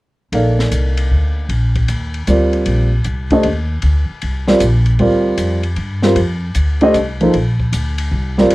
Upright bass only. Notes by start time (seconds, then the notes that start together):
0.32 A#1
0.71 C2
1.11 D2
1.49 A#1
1.88 D#2
2.27 D2
2.66 A#1
3.05 C2
3.44 D#2
3.83 D2
4.10 muted upright bass stroke
4.23 C2
4.61 A#1
4.99 D2
5.38 F2
5.77 G2
6.16 F2
6.56 D2
6.94 C2
7.34 A#1
7.73 D2
8.12 C2
8.51 A#1